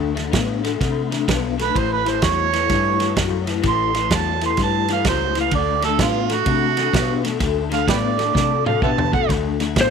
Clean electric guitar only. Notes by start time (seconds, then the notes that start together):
Already playing: D3 A3
0.15 D3 A3
0.32 D3 B3
0.63 D3 A3
0.81 D3 A3
1.11 D3 A3
1.27 D3 B3
1.58 D3 A3
1.74 A2 E3
2.05 A2 E3
2.22 A2 F#3
2.53 A2 E3
2.69 A2 E3
2.99 A2 E3
3.16 A2 F#3
3.47 A2 E3
3.62 A2 E3
3.94 A2 E3
4.11 A2 F#3
4.42 A2 E3
4.58 A2 E3
4.89 A2 E3
5.05 A2 F#3
5.36 A2 E3
5.52 D3 A3
5.82 D3 A3
5.99 D3 B3
6.29 D3 A3
6.46 D3 A3
6.77 D3 A3
6.93 D3 B3
7.23 D3 A3
7.39 D3 A3
7.70 D3 A3
7.87 D3 B3
8.18 D3 A3
8.33 D3 A3
8.65 D3 A3
8.82 D3 B3
9.11 D3 A3
9.28 D3 A3
9.60 D3 A3
9.76 D3 B3